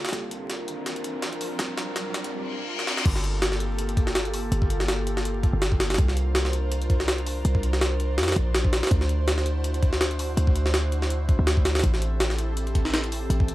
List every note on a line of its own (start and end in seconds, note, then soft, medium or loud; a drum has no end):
0.00 0.11 G1 loud
0.00 3.02 F4 medium
0.00 riser medium
0.05 snare medium
0.05 closed hi-hat medium
0.09 1.58 C2 loud
0.09 snare medium
0.09 closed hi-hat medium
0.13 3.03 C4 medium
0.13 3.03 D4 medium
0.13 3.03 A#4 medium
0.13 snare medium
0.13 closed hi-hat loud
0.31 closed hi-hat medium
0.50 snare medium
0.50 closed hi-hat medium
0.68 closed hi-hat medium
0.86 snare medium
0.86 closed hi-hat medium
0.96 closed hi-hat soft
1.04 closed hi-hat medium
1.22 snare medium
1.22 closed hi-hat medium
1.33 closed hi-hat soft
1.41 open hi-hat medium
1.59 2.32 C2 loud
1.59 snare medium
1.59 closed hi-hat loud
1.78 snare medium
1.78 closed hi-hat medium
1.96 snare medium
1.96 closed hi-hat medium
2.14 snare medium
2.14 closed hi-hat medium
2.24 closed hi-hat medium
2.32 reverse cymbal medium
2.79 snare medium
2.87 snare medium
2.97 snare medium
3.06 4.51 G1 loud
3.06 5.96 A#3 medium
3.06 8.87 F4 medium
3.06 5.96 G4 medium
3.06 5.96 A4 loud
3.06 kick loud
3.06 closed hi-hat medium
3.06 crash loud
3.16 snare soft
3.24 closed hi-hat medium
3.42 snare loud
3.42 closed hi-hat medium
3.52 snare medium
3.60 closed hi-hat medium
3.79 closed hi-hat medium
3.89 closed hi-hat soft
3.97 kick loud
3.97 closed hi-hat medium
4.07 snare medium
4.15 snare loud
4.15 closed hi-hat medium
4.25 closed hi-hat soft
4.34 open hi-hat medium
4.52 5.52 G1 loud
4.52 closed hi-hat loud
4.62 kick medium
4.70 closed hi-hat medium
4.80 snare medium
4.88 snare loud
4.88 closed hi-hat medium
5.07 closed hi-hat medium
5.17 snare medium
5.25 closed hi-hat medium
5.43 kick loud
5.43 closed hi-hat medium
5.53 5.97 G1 loud
5.62 snare loud
5.62 closed hi-hat medium
5.72 kick loud
5.80 snare loud
5.80 closed hi-hat medium
5.90 snare medium
5.90 closed hi-hat medium
5.94 snare medium
5.94 closed hi-hat medium
5.98 7.43 C2 loud
5.98 11.80 D4 medium
5.98 8.88 A#4 medium
5.98 11.80 C5 medium
5.98 kick loud
5.98 closed hi-hat medium
6.08 snare soft
6.17 closed hi-hat medium
6.35 snare loud
6.35 closed hi-hat medium
6.45 snare medium
6.53 closed hi-hat medium
6.72 closed hi-hat medium
6.82 closed hi-hat soft
6.90 kick loud
6.90 closed hi-hat medium
7.00 snare medium
7.08 snare loud
7.08 closed hi-hat medium
7.18 closed hi-hat soft
7.26 open hi-hat medium
7.45 8.19 C2 loud
7.45 closed hi-hat loud
7.55 kick medium
7.63 closed hi-hat medium
7.73 snare medium
7.81 snare loud
7.81 closed hi-hat medium
8.00 closed hi-hat medium
8.18 8.34 F2 loud
8.18 snare medium
8.18 closed hi-hat medium
8.23 snare medium
8.23 closed hi-hat medium
8.28 snare medium
8.28 closed hi-hat medium
8.32 snare medium
8.32 closed hi-hat medium
8.36 8.81 A#1 loud
8.36 kick loud
8.36 closed hi-hat medium
8.55 snare loud
8.55 closed hi-hat medium
8.65 kick loud
8.73 snare loud
8.73 closed hi-hat medium
8.83 snare medium
8.83 closed hi-hat medium
8.87 snare medium
8.87 closed hi-hat medium
8.91 10.36 D2 loud
8.91 13.55 E4 medium
8.91 11.81 F#4 medium
8.91 kick loud
8.91 closed hi-hat medium
9.01 snare soft
9.09 closed hi-hat medium
9.28 snare loud
9.28 closed hi-hat medium
9.38 snare medium
9.46 closed hi-hat medium
9.64 closed hi-hat medium
9.74 closed hi-hat soft
9.83 kick loud
9.83 closed hi-hat medium
9.93 snare medium
10.01 snare loud
10.01 closed hi-hat medium
10.11 closed hi-hat soft
10.19 open hi-hat medium
10.37 11.37 D2 loud
10.37 closed hi-hat loud
10.47 kick loud
10.56 closed hi-hat medium
10.66 snare medium
10.74 snare loud
10.74 closed hi-hat medium
10.92 closed hi-hat medium
11.02 snare medium
11.10 closed hi-hat medium
11.29 kick loud
11.29 closed hi-hat medium
11.39 11.82 D2 loud
11.47 snare loud
11.47 closed hi-hat medium
11.57 kick loud
11.65 snare loud
11.65 closed hi-hat medium
11.75 snare medium
11.75 closed hi-hat medium
11.79 snare medium
11.79 closed hi-hat medium
11.84 13.29 A1 loud
11.84 13.55 C4 medium
11.84 13.55 G4 medium
11.84 13.55 A4 medium
11.84 kick loud
11.84 closed hi-hat medium
11.94 snare soft
12.02 closed hi-hat medium
12.20 snare loud
12.20 closed hi-hat medium
12.30 snare medium
12.39 closed hi-hat medium
12.57 closed hi-hat medium
12.67 closed hi-hat soft
12.75 kick loud
12.75 closed hi-hat medium
12.85 snare medium
12.94 snare loud
12.94 closed hi-hat medium
13.04 closed hi-hat soft
13.12 open hi-hat medium
13.30 13.55 A1 loud
13.30 closed hi-hat medium
13.40 kick loud
13.48 closed hi-hat medium